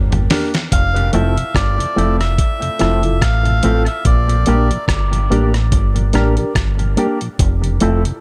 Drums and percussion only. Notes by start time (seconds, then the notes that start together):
0.12 closed hi-hat, mid tom
0.30 snare, open hi-hat
0.54 snare, closed hi-hat
0.72 kick, closed hi-hat
0.96 closed hi-hat
1.13 closed hi-hat
1.38 closed hi-hat
1.55 kick, cross-stick, closed hi-hat
1.80 closed hi-hat
1.98 closed hi-hat
2.21 cross-stick, closed hi-hat
2.38 kick, closed hi-hat
2.62 closed hi-hat
2.79 cross-stick, closed hi-hat
3.03 closed hi-hat
3.22 kick, cross-stick, closed hi-hat
3.45 closed hi-hat
3.63 closed hi-hat
3.86 closed hi-hat
4.05 kick, closed hi-hat
4.29 closed hi-hat
4.46 closed hi-hat
4.71 closed hi-hat
4.88 kick, cross-stick, closed hi-hat
5.13 closed hi-hat
5.32 closed hi-hat
5.54 cross-stick, closed hi-hat
5.72 kick, closed hi-hat
5.96 closed hi-hat
6.13 cross-stick, closed hi-hat
6.37 closed hi-hat
6.55 kick, cross-stick, closed hi-hat
6.79 closed hi-hat
6.97 closed hi-hat
7.21 closed hi-hat
7.39 kick, closed hi-hat
7.64 closed hi-hat
7.80 closed hi-hat
8.05 closed hi-hat